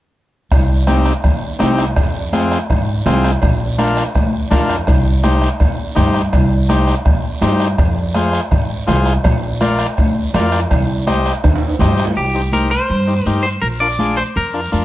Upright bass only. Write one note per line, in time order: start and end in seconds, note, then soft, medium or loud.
0.52 1.10 C2 loud
1.24 1.53 D#2 medium
1.61 1.90 C2 medium
1.97 2.55 F2 loud
2.70 2.99 G#2 medium
3.06 3.35 C2 medium
3.42 4.00 A#1 loud
4.15 4.44 D2 medium
4.52 4.80 F2 medium
4.88 5.46 C2 loud
5.60 5.89 D#2 medium
5.97 6.26 G2 medium
6.33 6.91 C2 loud
7.06 7.35 D#2 medium
7.42 7.71 G2 medium
7.79 8.37 F2 loud
8.52 8.81 G#2 medium
8.88 9.18 C2 medium
9.25 9.83 A#1 loud
9.98 10.27 D2 medium
10.34 10.64 F2 medium
10.71 11.29 C2 loud
11.44 11.73 D#2 medium
11.81 12.10 G2 medium
12.17 12.75 C2 medium
12.90 13.19 G2 medium
13.26 13.56 G2 medium
13.62 14.21 A#1 medium
14.36 14.65 F2 medium
14.73 14.85 F2 medium